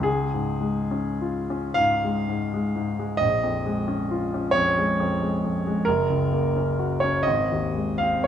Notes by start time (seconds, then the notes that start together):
0.00 C#2 G#4
0.34 G#2
0.61 G#3
0.91 C#4
1.21 F4
1.50 C#4
1.74 G#2 F5
2.04 G#3
2.28 G#2
2.54 G#3
2.76 G#2
2.99 G#3
3.17 A#1 D#5
3.43 F2
3.66 G#3
3.88 C#4
4.11 F4
4.34 C#4
4.51 F2 C#5
4.78 G#3
5.00 F2
5.22 G#3
5.44 F2
5.67 G#3
5.85 F#1 A#4
6.10 C#2
6.33 A#3
6.56 C#4
6.79 F#4
7.00 C#4 C#5
7.23 D#5
7.27 G#1
7.52 D#2
7.75 G#3
7.98 C4 F5
8.24 C#5